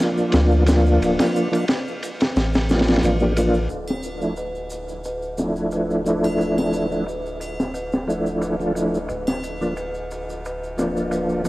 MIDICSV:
0, 0, Header, 1, 4, 480
1, 0, Start_track
1, 0, Key_signature, -1, "minor"
1, 0, Tempo, 674157
1, 721, Time_signature, 4, 2, 24, 8
1, 8179, End_track
2, 0, Start_track
2, 0, Title_t, "Tonewheel organ"
2, 0, Program_c, 0, 16
2, 0, Note_on_c, 0, 53, 77
2, 0, Note_on_c, 0, 58, 67
2, 2, Note_on_c, 0, 62, 69
2, 5, Note_on_c, 0, 65, 86
2, 452, Note_off_c, 0, 53, 0
2, 452, Note_off_c, 0, 58, 0
2, 454, Note_off_c, 0, 62, 0
2, 456, Note_off_c, 0, 65, 0
2, 468, Note_on_c, 0, 53, 94
2, 479, Note_on_c, 0, 58, 87
2, 485, Note_on_c, 0, 62, 86
2, 490, Note_on_c, 0, 65, 103
2, 1052, Note_off_c, 0, 53, 0
2, 1057, Note_off_c, 0, 58, 0
2, 1060, Note_off_c, 0, 62, 0
2, 1063, Note_off_c, 0, 65, 0
2, 1080, Note_on_c, 0, 53, 92
2, 1083, Note_on_c, 0, 58, 86
2, 1086, Note_on_c, 0, 62, 84
2, 1089, Note_on_c, 0, 65, 102
2, 1172, Note_off_c, 0, 53, 0
2, 1174, Note_off_c, 0, 58, 0
2, 1175, Note_off_c, 0, 62, 0
2, 1177, Note_off_c, 0, 65, 0
2, 1918, Note_on_c, 0, 58, 75
2, 1919, Note_on_c, 0, 53, 82
2, 1923, Note_on_c, 0, 62, 73
2, 1924, Note_on_c, 0, 65, 92
2, 2257, Note_off_c, 0, 53, 0
2, 2257, Note_off_c, 0, 58, 0
2, 2259, Note_off_c, 0, 62, 0
2, 2260, Note_off_c, 0, 65, 0
2, 2283, Note_on_c, 0, 58, 86
2, 2284, Note_on_c, 0, 53, 88
2, 2290, Note_on_c, 0, 62, 88
2, 2291, Note_on_c, 0, 67, 104
2, 2371, Note_off_c, 0, 53, 0
2, 2371, Note_off_c, 0, 58, 0
2, 2374, Note_off_c, 0, 62, 0
2, 2375, Note_off_c, 0, 67, 0
2, 2400, Note_on_c, 0, 53, 90
2, 2402, Note_on_c, 0, 58, 82
2, 2408, Note_on_c, 0, 62, 77
2, 2413, Note_on_c, 0, 65, 99
2, 2557, Note_off_c, 0, 53, 0
2, 2558, Note_off_c, 0, 58, 0
2, 2561, Note_off_c, 0, 62, 0
2, 2564, Note_off_c, 0, 65, 0
2, 2996, Note_on_c, 0, 53, 76
2, 3000, Note_on_c, 0, 57, 71
2, 3005, Note_on_c, 0, 62, 65
2, 3009, Note_on_c, 0, 64, 81
2, 3090, Note_off_c, 0, 53, 0
2, 3092, Note_off_c, 0, 57, 0
2, 3094, Note_off_c, 0, 62, 0
2, 3096, Note_off_c, 0, 64, 0
2, 3829, Note_on_c, 0, 57, 58
2, 3830, Note_on_c, 0, 53, 69
2, 3836, Note_on_c, 0, 62, 60
2, 3841, Note_on_c, 0, 64, 71
2, 4288, Note_off_c, 0, 53, 0
2, 4288, Note_off_c, 0, 57, 0
2, 4292, Note_off_c, 0, 62, 0
2, 4294, Note_off_c, 0, 64, 0
2, 4305, Note_on_c, 0, 53, 81
2, 4308, Note_on_c, 0, 57, 75
2, 4317, Note_on_c, 0, 62, 78
2, 4325, Note_on_c, 0, 64, 93
2, 4890, Note_off_c, 0, 53, 0
2, 4892, Note_off_c, 0, 57, 0
2, 4896, Note_off_c, 0, 62, 0
2, 4900, Note_off_c, 0, 64, 0
2, 4916, Note_on_c, 0, 53, 82
2, 4923, Note_on_c, 0, 57, 74
2, 4927, Note_on_c, 0, 62, 73
2, 4930, Note_on_c, 0, 64, 85
2, 5010, Note_off_c, 0, 53, 0
2, 5013, Note_off_c, 0, 57, 0
2, 5016, Note_off_c, 0, 62, 0
2, 5017, Note_off_c, 0, 64, 0
2, 5747, Note_on_c, 0, 53, 73
2, 5752, Note_on_c, 0, 57, 65
2, 5758, Note_on_c, 0, 62, 69
2, 5762, Note_on_c, 0, 64, 77
2, 6091, Note_off_c, 0, 53, 0
2, 6094, Note_off_c, 0, 57, 0
2, 6097, Note_off_c, 0, 62, 0
2, 6099, Note_off_c, 0, 64, 0
2, 6121, Note_on_c, 0, 53, 85
2, 6123, Note_on_c, 0, 57, 74
2, 6125, Note_on_c, 0, 62, 77
2, 6130, Note_on_c, 0, 65, 90
2, 6210, Note_off_c, 0, 53, 0
2, 6211, Note_off_c, 0, 57, 0
2, 6212, Note_off_c, 0, 62, 0
2, 6214, Note_off_c, 0, 65, 0
2, 6234, Note_on_c, 0, 53, 80
2, 6237, Note_on_c, 0, 57, 70
2, 6245, Note_on_c, 0, 62, 70
2, 6247, Note_on_c, 0, 64, 86
2, 6394, Note_off_c, 0, 53, 0
2, 6396, Note_off_c, 0, 57, 0
2, 6399, Note_off_c, 0, 62, 0
2, 6400, Note_off_c, 0, 64, 0
2, 6842, Note_on_c, 0, 53, 83
2, 6843, Note_on_c, 0, 58, 72
2, 6847, Note_on_c, 0, 62, 74
2, 6850, Note_on_c, 0, 65, 86
2, 6933, Note_off_c, 0, 53, 0
2, 6934, Note_off_c, 0, 58, 0
2, 6936, Note_off_c, 0, 62, 0
2, 6937, Note_off_c, 0, 65, 0
2, 7666, Note_on_c, 0, 53, 70
2, 7671, Note_on_c, 0, 58, 62
2, 7672, Note_on_c, 0, 62, 62
2, 7676, Note_on_c, 0, 65, 75
2, 8127, Note_off_c, 0, 53, 0
2, 8129, Note_off_c, 0, 58, 0
2, 8130, Note_off_c, 0, 62, 0
2, 8131, Note_off_c, 0, 65, 0
2, 8143, Note_on_c, 0, 53, 91
2, 8151, Note_on_c, 0, 58, 82
2, 8179, Note_off_c, 0, 53, 0
2, 8179, Note_off_c, 0, 58, 0
2, 8179, End_track
3, 0, Start_track
3, 0, Title_t, "Analog synth bass"
3, 0, Program_c, 1, 38
3, 239, Note_on_c, 1, 38, 102
3, 698, Note_off_c, 1, 38, 0
3, 719, Note_on_c, 1, 26, 97
3, 833, Note_off_c, 1, 26, 0
3, 1683, Note_on_c, 1, 33, 83
3, 2140, Note_off_c, 1, 33, 0
3, 2159, Note_on_c, 1, 33, 76
3, 2618, Note_off_c, 1, 33, 0
3, 2642, Note_on_c, 1, 26, 73
3, 6459, Note_off_c, 1, 26, 0
3, 6476, Note_on_c, 1, 26, 81
3, 8179, Note_off_c, 1, 26, 0
3, 8179, End_track
4, 0, Start_track
4, 0, Title_t, "Drums"
4, 0, Note_on_c, 9, 51, 57
4, 4, Note_on_c, 9, 38, 41
4, 68, Note_off_c, 9, 51, 0
4, 75, Note_off_c, 9, 38, 0
4, 125, Note_on_c, 9, 82, 36
4, 196, Note_off_c, 9, 82, 0
4, 227, Note_on_c, 9, 51, 88
4, 238, Note_on_c, 9, 82, 43
4, 241, Note_on_c, 9, 38, 109
4, 298, Note_off_c, 9, 51, 0
4, 310, Note_off_c, 9, 82, 0
4, 312, Note_off_c, 9, 38, 0
4, 364, Note_on_c, 9, 82, 25
4, 436, Note_off_c, 9, 82, 0
4, 472, Note_on_c, 9, 51, 83
4, 480, Note_on_c, 9, 82, 82
4, 488, Note_on_c, 9, 38, 92
4, 543, Note_off_c, 9, 51, 0
4, 551, Note_off_c, 9, 82, 0
4, 559, Note_off_c, 9, 38, 0
4, 614, Note_on_c, 9, 82, 39
4, 686, Note_off_c, 9, 82, 0
4, 728, Note_on_c, 9, 51, 62
4, 728, Note_on_c, 9, 82, 50
4, 799, Note_off_c, 9, 51, 0
4, 799, Note_off_c, 9, 82, 0
4, 848, Note_on_c, 9, 51, 81
4, 853, Note_on_c, 9, 38, 97
4, 854, Note_on_c, 9, 82, 22
4, 856, Note_on_c, 9, 81, 72
4, 919, Note_off_c, 9, 51, 0
4, 924, Note_off_c, 9, 38, 0
4, 925, Note_off_c, 9, 82, 0
4, 927, Note_off_c, 9, 81, 0
4, 968, Note_on_c, 9, 82, 84
4, 1039, Note_off_c, 9, 82, 0
4, 1089, Note_on_c, 9, 51, 59
4, 1098, Note_on_c, 9, 82, 38
4, 1103, Note_on_c, 9, 81, 60
4, 1161, Note_off_c, 9, 51, 0
4, 1169, Note_off_c, 9, 82, 0
4, 1174, Note_off_c, 9, 81, 0
4, 1197, Note_on_c, 9, 51, 68
4, 1203, Note_on_c, 9, 38, 86
4, 1209, Note_on_c, 9, 82, 50
4, 1268, Note_off_c, 9, 51, 0
4, 1274, Note_off_c, 9, 38, 0
4, 1280, Note_off_c, 9, 82, 0
4, 1336, Note_on_c, 9, 82, 22
4, 1408, Note_off_c, 9, 82, 0
4, 1443, Note_on_c, 9, 51, 54
4, 1447, Note_on_c, 9, 82, 83
4, 1514, Note_off_c, 9, 51, 0
4, 1518, Note_off_c, 9, 82, 0
4, 1567, Note_on_c, 9, 82, 37
4, 1571, Note_on_c, 9, 51, 69
4, 1580, Note_on_c, 9, 38, 95
4, 1639, Note_off_c, 9, 82, 0
4, 1642, Note_off_c, 9, 51, 0
4, 1651, Note_off_c, 9, 38, 0
4, 1680, Note_on_c, 9, 82, 49
4, 1685, Note_on_c, 9, 51, 69
4, 1687, Note_on_c, 9, 38, 97
4, 1752, Note_off_c, 9, 82, 0
4, 1756, Note_off_c, 9, 51, 0
4, 1758, Note_off_c, 9, 38, 0
4, 1803, Note_on_c, 9, 82, 25
4, 1817, Note_on_c, 9, 51, 85
4, 1818, Note_on_c, 9, 38, 102
4, 1875, Note_off_c, 9, 82, 0
4, 1888, Note_off_c, 9, 51, 0
4, 1889, Note_off_c, 9, 38, 0
4, 1916, Note_on_c, 9, 82, 73
4, 1929, Note_on_c, 9, 51, 61
4, 1930, Note_on_c, 9, 38, 85
4, 1987, Note_off_c, 9, 51, 0
4, 1987, Note_off_c, 9, 82, 0
4, 1987, Note_on_c, 9, 51, 62
4, 2001, Note_off_c, 9, 38, 0
4, 2001, Note_on_c, 9, 38, 83
4, 2048, Note_on_c, 9, 82, 32
4, 2052, Note_off_c, 9, 51, 0
4, 2052, Note_on_c, 9, 51, 61
4, 2056, Note_off_c, 9, 38, 0
4, 2056, Note_on_c, 9, 38, 85
4, 2106, Note_off_c, 9, 51, 0
4, 2106, Note_on_c, 9, 51, 67
4, 2119, Note_off_c, 9, 38, 0
4, 2119, Note_off_c, 9, 82, 0
4, 2119, Note_on_c, 9, 38, 79
4, 2158, Note_on_c, 9, 82, 51
4, 2172, Note_off_c, 9, 51, 0
4, 2172, Note_on_c, 9, 51, 58
4, 2190, Note_off_c, 9, 38, 0
4, 2229, Note_off_c, 9, 82, 0
4, 2243, Note_off_c, 9, 51, 0
4, 2275, Note_on_c, 9, 82, 22
4, 2347, Note_off_c, 9, 82, 0
4, 2396, Note_on_c, 9, 51, 62
4, 2399, Note_on_c, 9, 82, 95
4, 2467, Note_off_c, 9, 51, 0
4, 2471, Note_off_c, 9, 82, 0
4, 2520, Note_on_c, 9, 82, 34
4, 2592, Note_off_c, 9, 82, 0
4, 2630, Note_on_c, 9, 82, 42
4, 2637, Note_on_c, 9, 51, 70
4, 2701, Note_off_c, 9, 82, 0
4, 2708, Note_off_c, 9, 51, 0
4, 2760, Note_on_c, 9, 81, 68
4, 2760, Note_on_c, 9, 82, 24
4, 2778, Note_on_c, 9, 38, 41
4, 2831, Note_off_c, 9, 81, 0
4, 2831, Note_off_c, 9, 82, 0
4, 2850, Note_off_c, 9, 38, 0
4, 2869, Note_on_c, 9, 82, 76
4, 2877, Note_on_c, 9, 51, 51
4, 2940, Note_off_c, 9, 82, 0
4, 2948, Note_off_c, 9, 51, 0
4, 3001, Note_on_c, 9, 82, 32
4, 3072, Note_off_c, 9, 82, 0
4, 3108, Note_on_c, 9, 82, 41
4, 3113, Note_on_c, 9, 51, 74
4, 3179, Note_off_c, 9, 82, 0
4, 3184, Note_off_c, 9, 51, 0
4, 3241, Note_on_c, 9, 82, 20
4, 3312, Note_off_c, 9, 82, 0
4, 3346, Note_on_c, 9, 82, 72
4, 3356, Note_on_c, 9, 51, 57
4, 3417, Note_off_c, 9, 82, 0
4, 3427, Note_off_c, 9, 51, 0
4, 3478, Note_on_c, 9, 82, 33
4, 3549, Note_off_c, 9, 82, 0
4, 3589, Note_on_c, 9, 82, 45
4, 3597, Note_on_c, 9, 51, 70
4, 3660, Note_off_c, 9, 82, 0
4, 3668, Note_off_c, 9, 51, 0
4, 3718, Note_on_c, 9, 82, 20
4, 3790, Note_off_c, 9, 82, 0
4, 3828, Note_on_c, 9, 82, 69
4, 3833, Note_on_c, 9, 51, 50
4, 3840, Note_on_c, 9, 38, 34
4, 3899, Note_off_c, 9, 82, 0
4, 3904, Note_off_c, 9, 51, 0
4, 3912, Note_off_c, 9, 38, 0
4, 3960, Note_on_c, 9, 82, 29
4, 4031, Note_off_c, 9, 82, 0
4, 4068, Note_on_c, 9, 82, 42
4, 4072, Note_on_c, 9, 51, 72
4, 4139, Note_off_c, 9, 82, 0
4, 4144, Note_off_c, 9, 51, 0
4, 4204, Note_on_c, 9, 82, 22
4, 4275, Note_off_c, 9, 82, 0
4, 4315, Note_on_c, 9, 51, 61
4, 4315, Note_on_c, 9, 82, 80
4, 4386, Note_off_c, 9, 51, 0
4, 4386, Note_off_c, 9, 82, 0
4, 4441, Note_on_c, 9, 82, 33
4, 4446, Note_on_c, 9, 81, 65
4, 4512, Note_off_c, 9, 82, 0
4, 4517, Note_off_c, 9, 81, 0
4, 4543, Note_on_c, 9, 51, 73
4, 4562, Note_on_c, 9, 82, 44
4, 4615, Note_off_c, 9, 51, 0
4, 4633, Note_off_c, 9, 82, 0
4, 4686, Note_on_c, 9, 81, 66
4, 4687, Note_on_c, 9, 82, 26
4, 4690, Note_on_c, 9, 38, 39
4, 4757, Note_off_c, 9, 81, 0
4, 4758, Note_off_c, 9, 82, 0
4, 4761, Note_off_c, 9, 38, 0
4, 4793, Note_on_c, 9, 82, 70
4, 4794, Note_on_c, 9, 51, 60
4, 4864, Note_off_c, 9, 82, 0
4, 4866, Note_off_c, 9, 51, 0
4, 4926, Note_on_c, 9, 82, 31
4, 4998, Note_off_c, 9, 82, 0
4, 5028, Note_on_c, 9, 51, 69
4, 5045, Note_on_c, 9, 82, 48
4, 5099, Note_off_c, 9, 51, 0
4, 5116, Note_off_c, 9, 82, 0
4, 5169, Note_on_c, 9, 82, 24
4, 5240, Note_off_c, 9, 82, 0
4, 5270, Note_on_c, 9, 51, 52
4, 5277, Note_on_c, 9, 81, 54
4, 5279, Note_on_c, 9, 82, 81
4, 5341, Note_off_c, 9, 51, 0
4, 5348, Note_off_c, 9, 81, 0
4, 5350, Note_off_c, 9, 82, 0
4, 5411, Note_on_c, 9, 38, 43
4, 5411, Note_on_c, 9, 82, 35
4, 5482, Note_off_c, 9, 38, 0
4, 5482, Note_off_c, 9, 82, 0
4, 5510, Note_on_c, 9, 51, 75
4, 5515, Note_on_c, 9, 82, 45
4, 5582, Note_off_c, 9, 51, 0
4, 5586, Note_off_c, 9, 82, 0
4, 5641, Note_on_c, 9, 82, 20
4, 5651, Note_on_c, 9, 38, 48
4, 5712, Note_off_c, 9, 82, 0
4, 5722, Note_off_c, 9, 38, 0
4, 5749, Note_on_c, 9, 51, 50
4, 5766, Note_on_c, 9, 82, 74
4, 5820, Note_off_c, 9, 51, 0
4, 5837, Note_off_c, 9, 82, 0
4, 5884, Note_on_c, 9, 82, 32
4, 5955, Note_off_c, 9, 82, 0
4, 5991, Note_on_c, 9, 51, 77
4, 5995, Note_on_c, 9, 82, 49
4, 6062, Note_off_c, 9, 51, 0
4, 6067, Note_off_c, 9, 82, 0
4, 6128, Note_on_c, 9, 82, 21
4, 6199, Note_off_c, 9, 82, 0
4, 6230, Note_on_c, 9, 51, 58
4, 6241, Note_on_c, 9, 82, 82
4, 6301, Note_off_c, 9, 51, 0
4, 6312, Note_off_c, 9, 82, 0
4, 6368, Note_on_c, 9, 82, 33
4, 6439, Note_off_c, 9, 82, 0
4, 6468, Note_on_c, 9, 51, 72
4, 6474, Note_on_c, 9, 82, 49
4, 6540, Note_off_c, 9, 51, 0
4, 6545, Note_off_c, 9, 82, 0
4, 6602, Note_on_c, 9, 81, 76
4, 6605, Note_on_c, 9, 82, 26
4, 6607, Note_on_c, 9, 38, 52
4, 6673, Note_off_c, 9, 81, 0
4, 6676, Note_off_c, 9, 82, 0
4, 6678, Note_off_c, 9, 38, 0
4, 6716, Note_on_c, 9, 51, 60
4, 6719, Note_on_c, 9, 82, 89
4, 6787, Note_off_c, 9, 51, 0
4, 6790, Note_off_c, 9, 82, 0
4, 6847, Note_on_c, 9, 82, 31
4, 6918, Note_off_c, 9, 82, 0
4, 6952, Note_on_c, 9, 82, 43
4, 6953, Note_on_c, 9, 51, 78
4, 7024, Note_off_c, 9, 51, 0
4, 7024, Note_off_c, 9, 82, 0
4, 7078, Note_on_c, 9, 82, 20
4, 7150, Note_off_c, 9, 82, 0
4, 7197, Note_on_c, 9, 82, 84
4, 7200, Note_on_c, 9, 51, 62
4, 7269, Note_off_c, 9, 82, 0
4, 7272, Note_off_c, 9, 51, 0
4, 7330, Note_on_c, 9, 82, 38
4, 7401, Note_off_c, 9, 82, 0
4, 7440, Note_on_c, 9, 82, 51
4, 7445, Note_on_c, 9, 51, 69
4, 7511, Note_off_c, 9, 82, 0
4, 7516, Note_off_c, 9, 51, 0
4, 7572, Note_on_c, 9, 82, 22
4, 7643, Note_off_c, 9, 82, 0
4, 7677, Note_on_c, 9, 82, 83
4, 7681, Note_on_c, 9, 51, 57
4, 7683, Note_on_c, 9, 38, 32
4, 7748, Note_off_c, 9, 82, 0
4, 7752, Note_off_c, 9, 51, 0
4, 7754, Note_off_c, 9, 38, 0
4, 7808, Note_on_c, 9, 82, 34
4, 7879, Note_off_c, 9, 82, 0
4, 7911, Note_on_c, 9, 51, 75
4, 7916, Note_on_c, 9, 82, 46
4, 7982, Note_off_c, 9, 51, 0
4, 7987, Note_off_c, 9, 82, 0
4, 8040, Note_on_c, 9, 82, 22
4, 8111, Note_off_c, 9, 82, 0
4, 8151, Note_on_c, 9, 51, 62
4, 8151, Note_on_c, 9, 82, 97
4, 8179, Note_off_c, 9, 51, 0
4, 8179, Note_off_c, 9, 82, 0
4, 8179, End_track
0, 0, End_of_file